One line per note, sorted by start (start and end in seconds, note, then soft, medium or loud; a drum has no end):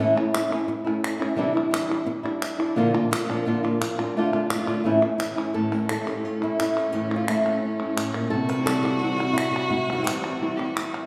0.00 0.15 A2 medium
0.00 0.15 E3 medium
0.00 0.16 A3 medium
0.00 0.16 C#4 medium
0.00 0.15 E4 medium
0.16 0.33 A3 soft
0.16 0.33 C#4 soft
0.16 0.33 E4 soft
0.16 clap medium
0.33 0.67 E3 soft
0.33 0.67 A3 medium
0.33 0.67 C#4 soft
0.33 0.68 E4 medium
0.33 clap medium
0.51 0.67 A3 soft
0.51 0.67 C#4 medium
0.51 0.68 E4 medium
0.51 clap soft
0.68 muted nylon-string guitar stroke medium
0.86 1.21 A3 soft
0.86 1.20 C#4 soft
0.86 1.19 E4 soft
0.86 clap soft
1.04 clap medium
1.20 1.38 A3 soft
1.20 1.37 C#4 soft
1.20 1.37 E4 soft
1.20 clap medium
1.38 1.54 C3 medium
1.38 1.54 E3 medium
1.38 1.55 G3 medium
1.38 1.55 D4 medium
1.38 1.54 E4 medium
1.55 1.71 G3 soft
1.55 1.72 D4 soft
1.55 1.72 E4 soft
1.55 clap medium
1.72 2.05 E3 soft
1.72 2.06 G3 soft
1.72 2.06 D4 soft
1.72 2.06 E4 soft
1.72 clap medium
1.88 2.05 G3 medium
1.88 2.06 D4 medium
1.88 2.06 E4 medium
1.88 clap soft
2.06 muted nylon-string guitar stroke medium
2.24 2.59 G3 soft
2.24 2.58 D4 soft
2.24 2.57 E4 soft
2.24 clap soft
2.42 clap medium
2.58 2.76 G3 soft
2.58 2.76 D4 soft
2.58 2.75 E4 medium
2.58 clap medium
2.75 2.93 A#2 medium
2.75 2.93 D3 loud
2.75 2.93 F3 medium
2.75 2.93 A#3 medium
2.75 2.93 D4 medium
2.75 2.92 F4 medium
2.94 3.11 A#3 soft
2.94 3.11 D4 soft
2.94 3.10 F4 soft
2.94 clap medium
3.11 3.19 A#3 soft
3.11 3.19 D4 soft
3.11 3.19 F4 medium
3.11 muted nylon-string guitar stroke medium
3.11 clap medium
3.20 3.23 F3 soft
3.20 3.24 A#3 soft
3.20 3.24 D4 soft
3.20 3.24 F4 soft
3.24 3.28 F3 medium
3.24 3.28 A#3 medium
3.24 3.28 D4 medium
3.24 3.28 F4 medium
3.28 3.45 A#2 medium
3.28 3.45 F3 medium
3.28 3.45 A#3 medium
3.28 3.45 D4 medium
3.28 3.46 F4 medium
3.28 clap soft
3.45 3.62 A#2 medium
3.45 3.63 D3 medium
3.45 3.63 A#3 medium
3.45 3.63 D4 medium
3.45 3.62 F4 medium
3.45 muted nylon-string guitar stroke medium
3.63 3.81 A#3 soft
3.63 3.80 D4 medium
3.63 3.80 F4 medium
3.63 clap soft
3.80 3.97 F3 soft
3.80 3.97 A#3 soft
3.80 3.97 D4 medium
3.80 3.96 F4 soft
3.80 muted nylon-string guitar stroke medium
3.80 clap medium
3.98 4.15 A#3 soft
3.98 4.15 D4 soft
3.98 4.14 F4 soft
3.98 clap medium
4.14 4.32 D3 medium
4.14 4.32 A3 medium
4.14 4.32 D4 medium
4.14 4.31 F4 medium
4.32 4.50 A3 soft
4.32 4.49 D4 soft
4.32 4.48 F4 soft
4.32 clap medium
4.49 4.56 D3 soft
4.49 4.53 A3 soft
4.49 4.53 D4 soft
4.49 4.53 F4 medium
4.49 muted nylon-string guitar stroke medium
4.49 clap medium
4.54 4.57 A3 soft
4.54 4.57 D4 soft
4.54 4.58 F4 soft
4.58 4.61 D3 soft
4.58 4.62 A3 medium
4.58 4.62 D4 medium
4.58 4.62 F4 medium
4.62 4.66 D3 medium
4.62 4.66 A3 medium
4.62 4.66 D4 medium
4.62 4.67 F4 medium
4.67 4.84 D3 medium
4.67 4.84 A3 medium
4.67 4.84 D4 medium
4.67 4.84 F4 medium
4.67 clap medium
4.84 5.01 A2 medium
4.84 5.01 E3 medium
4.84 5.02 A3 medium
4.84 5.02 C#4 medium
4.84 5.00 E4 medium
4.84 muted nylon-string guitar stroke medium
5.02 5.17 A3 soft
5.02 5.18 C#4 soft
5.02 5.19 E4 medium
5.02 clap soft
5.18 5.36 E3 soft
5.18 5.36 A3 soft
5.18 5.37 C#4 medium
5.18 5.36 E4 medium
5.18 muted nylon-string guitar stroke medium
5.18 clap medium
5.37 5.54 A3 soft
5.37 5.54 C#4 soft
5.37 5.54 E4 soft
5.37 clap soft
5.53 5.71 A2 medium
5.53 5.71 E3 medium
5.53 5.71 A3 medium
5.53 8.33 C#4 medium
5.53 5.71 C#4 medium
5.53 5.70 E4 medium
5.53 5.89 A4 loud
5.71 5.88 A3 soft
5.71 5.89 C#4 soft
5.71 5.88 E4 soft
5.71 5.89 A#4 medium
5.71 clap soft
5.89 6.05 E3 soft
5.89 6.06 A3 soft
5.89 6.06 C#4 soft
5.89 6.05 E4 medium
5.89 6.07 A4 loud
5.89 clap medium
6.06 6.23 A3 soft
6.06 6.23 C#4 soft
6.06 6.23 E4 soft
6.06 6.25 G4 medium
6.06 clap medium
6.23 6.42 F4 loud
6.23 muted nylon-string guitar stroke soft
6.41 6.92 A3 soft
6.41 6.93 C#4 soft
6.41 6.94 E4 soft
6.41 clap soft
6.60 7.12 E4 medium
6.60 clap medium
6.77 6.92 F4 medium
6.77 clap medium
6.92 7.10 A2 medium
6.92 7.10 E3 medium
6.92 7.10 A3 medium
6.92 7.09 C#4 medium
6.92 7.09 E4 medium
6.92 7.16 G4 loud
7.10 7.27 A3 soft
7.10 7.27 C#4 soft
7.10 7.27 E4 soft
7.10 clap medium
7.16 7.28 F4 medium
7.27 7.44 E3 soft
7.27 7.45 A3 soft
7.27 7.44 C#4 soft
7.27 7.43 E4 medium
7.27 clap medium
7.44 7.61 A3 soft
7.44 7.61 C#4 soft
7.44 7.62 E4 soft
7.44 clap soft
7.61 8.31 C#4 soft
7.61 muted nylon-string guitar stroke medium
7.79 8.32 A3 soft
7.79 8.32 C#4 soft
7.79 8.59 E4 soft
7.79 clap soft
7.96 8.14 A2 medium
7.96 clap medium
8.14 8.32 A#2 medium
8.14 clap medium
8.30 9.70 C3 medium
8.30 8.67 G3 soft
8.30 9.70 C4 soft
8.30 8.82 E4 soft
8.30 10.58 F#4 loud
8.30 8.49 A4 loud
8.30 muted nylon-string guitar stroke medium
8.49 8.65 B4 loud
8.49 clap soft
8.58 8.61 E3 soft
8.58 8.61 G3 soft
8.58 8.62 C4 medium
8.58 8.62 E4 medium
8.62 8.66 E3 medium
8.62 8.66 G3 medium
8.62 8.66 C4 medium
8.62 8.67 E4 medium
8.62 9.17 A4 loud
8.67 8.84 C3 medium
8.67 8.84 E3 medium
8.67 8.84 G3 medium
8.67 8.84 C4 medium
8.67 8.83 E4 medium
8.67 clap medium
8.83 9.02 G3 soft
8.83 9.02 C4 soft
8.83 9.01 E4 soft
8.83 8.99 G4 medium
8.83 clap soft
8.99 9.19 C3 medium
8.99 9.19 E3 medium
8.99 9.19 G3 medium
8.99 9.50 F#4 loud
9.03 9.18 C4 medium
9.03 9.17 E4 medium
9.19 9.35 G3 soft
9.19 9.36 C4 soft
9.19 9.36 E4 soft
9.19 clap soft
9.33 9.68 E4 medium
9.33 muted nylon-string guitar stroke medium
9.38 clap medium
9.51 9.92 F#4 medium
9.56 clap medium
9.69 10.07 C3 medium
9.69 9.92 E4 medium
9.69 muted nylon-string guitar stroke medium
9.90 9.96 E3 soft
9.90 9.96 G3 soft
9.90 9.96 C4 medium
9.90 9.97 E4 soft
9.90 10.04 F#4 medium
9.90 clap medium
9.97 10.00 E3 medium
9.97 10.00 G3 medium
9.97 10.01 C4 medium
9.97 10.01 E4 medium
10.01 10.05 E3 medium
10.01 10.05 G3 medium
10.01 10.05 C4 medium
10.01 10.06 E4 medium
10.01 11.06 G4 medium
10.06 10.23 C3 medium
10.06 10.23 E3 medium
10.06 10.23 G3 medium
10.06 10.23 C4 medium
10.06 10.22 E4 medium
10.06 clap loud
10.24 10.40 G3 soft
10.24 10.41 C4 soft
10.24 10.41 E4 soft
10.24 clap soft
10.40 10.58 C3 medium
10.40 10.58 E3 medium
10.40 10.58 G3 medium
10.40 10.58 C4 medium
10.40 10.57 E4 medium
10.56 10.75 G3 soft
10.56 10.75 C4 soft
10.56 10.75 E4 soft
10.56 10.66 G4 medium
10.56 clap soft
10.65 10.76 F#4 medium
10.75 10.86 E4 medium
10.75 muted nylon-string guitar stroke medium
10.75 clap medium
10.84 10.93 F#4 medium
10.94 11.06 E4 medium
10.94 clap medium